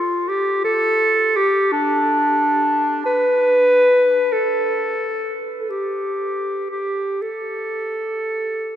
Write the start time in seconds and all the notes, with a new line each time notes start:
Already playing: F4
0.29 G4
0.64 A4
1.36 G4
1.72 D4
3.06 B4
4.32 A4
5.61 A4
5.70 G4
6.71 G4
7.22 A4